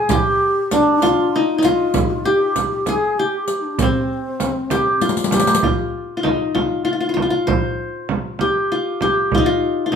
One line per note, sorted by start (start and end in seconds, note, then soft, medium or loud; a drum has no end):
0.00 0.14 G#4 medium
0.00 0.17 G#4 medium
0.09 1.37 G4 medium
0.09 0.75 G4 medium
0.09 riq medium
0.09 frame drum medium
0.71 1.42 D4 medium
0.71 1.07 D4 medium
0.71 riq medium
0.71 frame drum medium
1.02 1.64 F4 medium
1.02 1.37 F4 medium
1.02 riq medium
1.02 frame drum medium
1.36 1.58 D#4 medium
1.36 1.67 D#4 medium
1.58 3.03 D#4 medium
1.62 2.99 F4 medium
1.62 2.07 F4 medium
1.62 riq soft
1.62 frame drum medium
1.94 riq medium
1.94 frame drum medium
2.08 2.27 F4 medium
2.08 2.11 G4 medium
2.25 2.71 G4 medium
2.25 2.95 G4 medium
2.56 riq soft
2.56 frame drum medium
2.71 2.87 G4 medium
2.86 3.20 G#4 medium
2.86 3.25 G#4 medium
2.86 riq medium
2.86 frame drum medium
3.18 3.60 G4 medium
3.18 4.45 G4 medium
3.48 riq soft
3.60 3.82 D4 medium
3.60 3.66 D#4 soft
3.79 5.02 C4 medium
3.79 5.42 C4 medium
3.79 riq medium
3.79 frame drum medium
4.40 riq soft
4.40 frame drum medium
4.70 5.33 G4 medium
4.70 riq medium
4.70 frame drum medium
5.01 5.63 F4 medium
5.01 riq medium
5.09 riq medium
5.17 riq medium
5.24 riq medium
5.31 6.59 G4 medium
5.31 riq medium
5.31 frame drum medium
5.40 riq medium
5.47 riq medium
5.55 riq medium
5.63 6.17 F4 medium
5.63 frame drum medium
6.17 6.54 F4 medium
6.23 7.67 D#4 medium
6.23 frame drum medium
6.55 6.84 F4 medium
6.55 frame drum medium
6.85 6.92 F4 medium
6.93 7.00 F4 medium
7.00 7.09 F4 medium
7.09 7.13 F4 medium
7.14 7.22 F4 medium
7.14 frame drum medium
7.22 7.30 F4 medium
7.30 8.65 F4 medium
7.47 8.53 C5 medium
7.47 frame drum medium
8.09 frame drum medium
8.39 9.02 G4 medium
8.39 frame drum medium
8.72 9.34 F4 medium
9.01 9.96 G4 medium
9.01 frame drum medium
9.32 9.46 F4 medium
9.32 frame drum medium
9.38 9.91 D#4 medium
9.46 9.86 F4 medium
9.86 9.96 F4 medium
9.92 9.96 D#4 medium